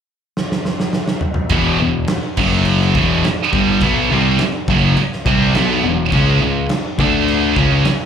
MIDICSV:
0, 0, Header, 1, 6, 480
1, 0, Start_track
1, 0, Tempo, 575816
1, 1270, Time_signature, 4, 2, 24, 8
1, 6715, End_track
2, 0, Start_track
2, 0, Title_t, "Distorted electric guitar"
2, 0, Program_c, 0, 30
2, 1261, Note_on_c, 0, 40, 93
2, 1267, Note_on_c, 0, 47, 112
2, 1275, Note_on_c, 0, 52, 120
2, 1498, Note_off_c, 0, 40, 0
2, 1501, Note_off_c, 0, 47, 0
2, 1505, Note_off_c, 0, 52, 0
2, 1508, Note_on_c, 0, 40, 61
2, 1512, Note_on_c, 0, 47, 82
2, 1701, Note_off_c, 0, 40, 0
2, 1703, Note_off_c, 0, 47, 0
2, 1989, Note_on_c, 0, 42, 94
2, 1990, Note_on_c, 0, 49, 102
2, 1997, Note_on_c, 0, 54, 91
2, 2462, Note_off_c, 0, 42, 0
2, 2462, Note_off_c, 0, 49, 0
2, 2466, Note_off_c, 0, 54, 0
2, 2467, Note_on_c, 0, 40, 79
2, 2472, Note_on_c, 0, 47, 88
2, 2478, Note_on_c, 0, 52, 95
2, 2701, Note_off_c, 0, 40, 0
2, 2703, Note_off_c, 0, 47, 0
2, 2706, Note_off_c, 0, 52, 0
2, 2946, Note_on_c, 0, 43, 83
2, 2952, Note_on_c, 0, 50, 89
2, 2954, Note_on_c, 0, 55, 109
2, 3177, Note_off_c, 0, 50, 0
2, 3180, Note_off_c, 0, 43, 0
2, 3180, Note_on_c, 0, 47, 97
2, 3184, Note_off_c, 0, 55, 0
2, 3187, Note_on_c, 0, 54, 104
2, 3188, Note_on_c, 0, 59, 127
2, 3416, Note_off_c, 0, 47, 0
2, 3420, Note_off_c, 0, 54, 0
2, 3420, Note_on_c, 0, 48, 82
2, 3421, Note_off_c, 0, 59, 0
2, 3423, Note_on_c, 0, 55, 94
2, 3428, Note_on_c, 0, 60, 104
2, 3657, Note_off_c, 0, 48, 0
2, 3659, Note_off_c, 0, 55, 0
2, 3661, Note_off_c, 0, 60, 0
2, 3903, Note_on_c, 0, 42, 96
2, 3907, Note_on_c, 0, 49, 103
2, 3913, Note_on_c, 0, 54, 98
2, 4139, Note_off_c, 0, 42, 0
2, 4141, Note_off_c, 0, 49, 0
2, 4144, Note_off_c, 0, 54, 0
2, 4380, Note_on_c, 0, 48, 94
2, 4385, Note_on_c, 0, 55, 91
2, 4389, Note_on_c, 0, 60, 101
2, 4617, Note_off_c, 0, 48, 0
2, 4620, Note_off_c, 0, 55, 0
2, 4621, Note_off_c, 0, 60, 0
2, 4632, Note_on_c, 0, 47, 88
2, 4634, Note_on_c, 0, 54, 100
2, 4638, Note_on_c, 0, 59, 98
2, 4861, Note_off_c, 0, 47, 0
2, 4864, Note_off_c, 0, 54, 0
2, 4866, Note_off_c, 0, 59, 0
2, 4868, Note_on_c, 0, 40, 63
2, 4871, Note_on_c, 0, 47, 70
2, 5060, Note_off_c, 0, 40, 0
2, 5062, Note_off_c, 0, 47, 0
2, 5104, Note_on_c, 0, 49, 102
2, 5110, Note_on_c, 0, 56, 120
2, 5118, Note_on_c, 0, 61, 111
2, 5331, Note_off_c, 0, 49, 0
2, 5333, Note_off_c, 0, 56, 0
2, 5341, Note_on_c, 0, 49, 69
2, 5343, Note_on_c, 0, 56, 73
2, 5346, Note_off_c, 0, 61, 0
2, 5537, Note_off_c, 0, 49, 0
2, 5538, Note_off_c, 0, 56, 0
2, 5821, Note_on_c, 0, 50, 93
2, 5831, Note_on_c, 0, 57, 92
2, 5832, Note_on_c, 0, 62, 99
2, 6298, Note_off_c, 0, 50, 0
2, 6303, Note_off_c, 0, 57, 0
2, 6304, Note_off_c, 0, 62, 0
2, 6306, Note_on_c, 0, 49, 90
2, 6310, Note_on_c, 0, 56, 95
2, 6317, Note_on_c, 0, 61, 96
2, 6536, Note_off_c, 0, 49, 0
2, 6543, Note_off_c, 0, 56, 0
2, 6546, Note_off_c, 0, 61, 0
2, 6715, End_track
3, 0, Start_track
3, 0, Title_t, "Picked electric bass"
3, 0, Program_c, 1, 34
3, 1254, Note_on_c, 1, 28, 89
3, 1485, Note_off_c, 1, 28, 0
3, 1502, Note_on_c, 1, 28, 80
3, 1729, Note_off_c, 1, 28, 0
3, 1984, Note_on_c, 1, 30, 96
3, 2433, Note_off_c, 1, 30, 0
3, 2462, Note_on_c, 1, 28, 95
3, 2688, Note_off_c, 1, 28, 0
3, 2945, Note_on_c, 1, 31, 84
3, 3170, Note_off_c, 1, 31, 0
3, 3185, Note_on_c, 1, 35, 83
3, 3410, Note_off_c, 1, 35, 0
3, 3437, Note_on_c, 1, 36, 97
3, 3656, Note_off_c, 1, 36, 0
3, 3906, Note_on_c, 1, 30, 98
3, 4130, Note_off_c, 1, 30, 0
3, 4384, Note_on_c, 1, 36, 89
3, 4609, Note_off_c, 1, 36, 0
3, 4625, Note_on_c, 1, 35, 102
3, 4850, Note_off_c, 1, 35, 0
3, 4865, Note_on_c, 1, 28, 81
3, 5090, Note_off_c, 1, 28, 0
3, 5109, Note_on_c, 1, 37, 96
3, 5332, Note_off_c, 1, 37, 0
3, 5347, Note_on_c, 1, 37, 83
3, 5571, Note_off_c, 1, 37, 0
3, 5831, Note_on_c, 1, 38, 101
3, 6278, Note_off_c, 1, 38, 0
3, 6306, Note_on_c, 1, 37, 99
3, 6531, Note_off_c, 1, 37, 0
3, 6715, End_track
4, 0, Start_track
4, 0, Title_t, "Muted distorted electric guitar strokes"
4, 2710, Note_on_c, 9, 29, 57
4, 2794, Note_off_c, 9, 29, 0
4, 3668, Note_on_c, 9, 29, 64
4, 3752, Note_off_c, 9, 29, 0
4, 4146, Note_on_c, 9, 29, 64
4, 4230, Note_off_c, 9, 29, 0
4, 6546, Note_on_c, 9, 29, 59
4, 6629, Note_off_c, 9, 29, 0
4, 6715, End_track
5, 0, Start_track
5, 0, Title_t, "Muted picked electric bass strokes"
5, 2723, Note_on_c, 9, 29, 42
5, 2806, Note_off_c, 9, 29, 0
5, 3672, Note_on_c, 9, 29, 43
5, 3755, Note_off_c, 9, 29, 0
5, 4156, Note_on_c, 9, 29, 41
5, 4239, Note_off_c, 9, 29, 0
5, 6551, Note_on_c, 9, 29, 41
5, 6635, Note_off_c, 9, 29, 0
5, 6715, End_track
6, 0, Start_track
6, 0, Title_t, "Drums"
6, 308, Note_on_c, 9, 38, 69
6, 391, Note_off_c, 9, 38, 0
6, 433, Note_on_c, 9, 38, 81
6, 516, Note_off_c, 9, 38, 0
6, 544, Note_on_c, 9, 38, 78
6, 628, Note_off_c, 9, 38, 0
6, 665, Note_on_c, 9, 38, 88
6, 748, Note_off_c, 9, 38, 0
6, 775, Note_on_c, 9, 38, 86
6, 859, Note_off_c, 9, 38, 0
6, 897, Note_on_c, 9, 38, 101
6, 980, Note_off_c, 9, 38, 0
6, 1007, Note_on_c, 9, 45, 101
6, 1090, Note_off_c, 9, 45, 0
6, 1119, Note_on_c, 9, 45, 97
6, 1202, Note_off_c, 9, 45, 0
6, 1245, Note_on_c, 9, 49, 64
6, 1255, Note_on_c, 9, 36, 106
6, 1328, Note_off_c, 9, 49, 0
6, 1338, Note_off_c, 9, 36, 0
6, 1729, Note_on_c, 9, 49, 65
6, 1736, Note_on_c, 9, 38, 113
6, 1813, Note_off_c, 9, 49, 0
6, 1819, Note_off_c, 9, 38, 0
6, 1975, Note_on_c, 9, 49, 99
6, 1979, Note_on_c, 9, 36, 103
6, 2058, Note_off_c, 9, 49, 0
6, 2063, Note_off_c, 9, 36, 0
6, 2209, Note_on_c, 9, 49, 67
6, 2293, Note_off_c, 9, 49, 0
6, 2343, Note_on_c, 9, 38, 34
6, 2426, Note_off_c, 9, 38, 0
6, 2460, Note_on_c, 9, 36, 103
6, 2543, Note_off_c, 9, 36, 0
6, 2703, Note_on_c, 9, 49, 60
6, 2710, Note_on_c, 9, 38, 112
6, 2787, Note_off_c, 9, 49, 0
6, 2793, Note_off_c, 9, 38, 0
6, 2942, Note_on_c, 9, 36, 116
6, 3025, Note_off_c, 9, 36, 0
6, 3173, Note_on_c, 9, 49, 59
6, 3181, Note_on_c, 9, 36, 103
6, 3256, Note_off_c, 9, 49, 0
6, 3264, Note_off_c, 9, 36, 0
6, 3654, Note_on_c, 9, 49, 62
6, 3661, Note_on_c, 9, 38, 112
6, 3738, Note_off_c, 9, 49, 0
6, 3744, Note_off_c, 9, 38, 0
6, 3901, Note_on_c, 9, 36, 112
6, 3985, Note_off_c, 9, 36, 0
6, 4141, Note_on_c, 9, 49, 54
6, 4224, Note_off_c, 9, 49, 0
6, 4273, Note_on_c, 9, 38, 33
6, 4357, Note_off_c, 9, 38, 0
6, 4383, Note_on_c, 9, 36, 109
6, 4466, Note_off_c, 9, 36, 0
6, 4623, Note_on_c, 9, 49, 61
6, 4630, Note_on_c, 9, 38, 113
6, 4706, Note_off_c, 9, 49, 0
6, 4713, Note_off_c, 9, 38, 0
6, 5102, Note_on_c, 9, 49, 57
6, 5103, Note_on_c, 9, 36, 110
6, 5185, Note_off_c, 9, 49, 0
6, 5187, Note_off_c, 9, 36, 0
6, 5579, Note_on_c, 9, 49, 65
6, 5585, Note_on_c, 9, 38, 112
6, 5662, Note_off_c, 9, 49, 0
6, 5669, Note_off_c, 9, 38, 0
6, 5825, Note_on_c, 9, 36, 108
6, 5908, Note_off_c, 9, 36, 0
6, 6070, Note_on_c, 9, 49, 63
6, 6153, Note_off_c, 9, 49, 0
6, 6305, Note_on_c, 9, 36, 100
6, 6389, Note_off_c, 9, 36, 0
6, 6542, Note_on_c, 9, 49, 64
6, 6549, Note_on_c, 9, 38, 113
6, 6626, Note_off_c, 9, 49, 0
6, 6632, Note_off_c, 9, 38, 0
6, 6715, End_track
0, 0, End_of_file